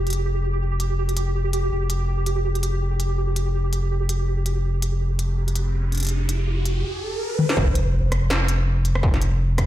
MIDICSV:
0, 0, Header, 1, 6, 480
1, 0, Start_track
1, 0, Tempo, 365854
1, 331, Time_signature, 4, 2, 24, 8
1, 12677, End_track
2, 0, Start_track
2, 0, Title_t, "Synth texture"
2, 0, Program_c, 0, 99
2, 0, Note_on_c, 0, 67, 79
2, 8971, Note_off_c, 0, 67, 0
2, 12677, End_track
3, 0, Start_track
3, 0, Title_t, "Sub bass"
3, 0, Program_c, 1, 38
3, 0, Note_on_c, 1, 29, 83
3, 2230, Note_off_c, 1, 29, 0
3, 2250, Note_on_c, 1, 29, 90
3, 8970, Note_off_c, 1, 29, 0
3, 9930, Note_on_c, 1, 29, 104
3, 11837, Note_off_c, 1, 29, 0
3, 11850, Note_on_c, 1, 29, 106
3, 12677, Note_off_c, 1, 29, 0
3, 12677, End_track
4, 0, Start_track
4, 0, Title_t, "Riser"
4, 0, Program_c, 2, 103
4, 6089, Note_on_c, 2, 60, 67
4, 9930, Note_off_c, 2, 60, 0
4, 12677, End_track
5, 0, Start_track
5, 0, Title_t, "Sub drop"
5, 0, Program_c, 3, 103
5, 9930, Note_on_c, 3, 60, 72
5, 11850, Note_off_c, 3, 60, 0
5, 12677, End_track
6, 0, Start_track
6, 0, Title_t, "Drums"
6, 88, Note_on_c, 9, 42, 28
6, 134, Note_off_c, 9, 42, 0
6, 134, Note_on_c, 9, 42, 38
6, 168, Note_off_c, 9, 42, 0
6, 168, Note_on_c, 9, 42, 50
6, 299, Note_off_c, 9, 42, 0
6, 1048, Note_on_c, 9, 42, 60
6, 1179, Note_off_c, 9, 42, 0
6, 1429, Note_on_c, 9, 42, 32
6, 1530, Note_off_c, 9, 42, 0
6, 1530, Note_on_c, 9, 42, 71
6, 1661, Note_off_c, 9, 42, 0
6, 2011, Note_on_c, 9, 42, 61
6, 2142, Note_off_c, 9, 42, 0
6, 2489, Note_on_c, 9, 42, 70
6, 2621, Note_off_c, 9, 42, 0
6, 2970, Note_on_c, 9, 42, 55
6, 3102, Note_off_c, 9, 42, 0
6, 3350, Note_on_c, 9, 42, 33
6, 3451, Note_off_c, 9, 42, 0
6, 3451, Note_on_c, 9, 42, 68
6, 3582, Note_off_c, 9, 42, 0
6, 3932, Note_on_c, 9, 42, 59
6, 4063, Note_off_c, 9, 42, 0
6, 4412, Note_on_c, 9, 42, 68
6, 4543, Note_off_c, 9, 42, 0
6, 4890, Note_on_c, 9, 42, 57
6, 5021, Note_off_c, 9, 42, 0
6, 5368, Note_on_c, 9, 42, 69
6, 5500, Note_off_c, 9, 42, 0
6, 5849, Note_on_c, 9, 42, 59
6, 5981, Note_off_c, 9, 42, 0
6, 6329, Note_on_c, 9, 42, 76
6, 6460, Note_off_c, 9, 42, 0
6, 6809, Note_on_c, 9, 42, 62
6, 6941, Note_off_c, 9, 42, 0
6, 7188, Note_on_c, 9, 42, 33
6, 7289, Note_off_c, 9, 42, 0
6, 7289, Note_on_c, 9, 42, 71
6, 7420, Note_off_c, 9, 42, 0
6, 7770, Note_on_c, 9, 42, 28
6, 7803, Note_off_c, 9, 42, 0
6, 7803, Note_on_c, 9, 42, 30
6, 7839, Note_off_c, 9, 42, 0
6, 7839, Note_on_c, 9, 42, 35
6, 7872, Note_off_c, 9, 42, 0
6, 7872, Note_on_c, 9, 42, 38
6, 7908, Note_off_c, 9, 42, 0
6, 7908, Note_on_c, 9, 42, 41
6, 7934, Note_off_c, 9, 42, 0
6, 7934, Note_on_c, 9, 42, 43
6, 7959, Note_off_c, 9, 42, 0
6, 7959, Note_on_c, 9, 42, 50
6, 7985, Note_off_c, 9, 42, 0
6, 7985, Note_on_c, 9, 42, 52
6, 8117, Note_off_c, 9, 42, 0
6, 8251, Note_on_c, 9, 42, 77
6, 8383, Note_off_c, 9, 42, 0
6, 8731, Note_on_c, 9, 42, 62
6, 8863, Note_off_c, 9, 42, 0
6, 9693, Note_on_c, 9, 48, 60
6, 9824, Note_off_c, 9, 48, 0
6, 9831, Note_on_c, 9, 38, 68
6, 9931, Note_on_c, 9, 36, 118
6, 9962, Note_off_c, 9, 38, 0
6, 10062, Note_off_c, 9, 36, 0
6, 10173, Note_on_c, 9, 42, 86
6, 10304, Note_off_c, 9, 42, 0
6, 10651, Note_on_c, 9, 37, 83
6, 10651, Note_on_c, 9, 42, 70
6, 10783, Note_off_c, 9, 37, 0
6, 10783, Note_off_c, 9, 42, 0
6, 10892, Note_on_c, 9, 37, 83
6, 10892, Note_on_c, 9, 38, 120
6, 11023, Note_off_c, 9, 37, 0
6, 11023, Note_off_c, 9, 38, 0
6, 11132, Note_on_c, 9, 42, 88
6, 11263, Note_off_c, 9, 42, 0
6, 11611, Note_on_c, 9, 42, 73
6, 11742, Note_off_c, 9, 42, 0
6, 11748, Note_on_c, 9, 37, 81
6, 11850, Note_on_c, 9, 36, 123
6, 11879, Note_off_c, 9, 37, 0
6, 11981, Note_off_c, 9, 36, 0
6, 11989, Note_on_c, 9, 38, 36
6, 12091, Note_on_c, 9, 42, 82
6, 12120, Note_off_c, 9, 38, 0
6, 12222, Note_off_c, 9, 42, 0
6, 12570, Note_on_c, 9, 36, 66
6, 12571, Note_on_c, 9, 37, 78
6, 12571, Note_on_c, 9, 42, 69
6, 12677, Note_off_c, 9, 36, 0
6, 12677, Note_off_c, 9, 37, 0
6, 12677, Note_off_c, 9, 42, 0
6, 12677, End_track
0, 0, End_of_file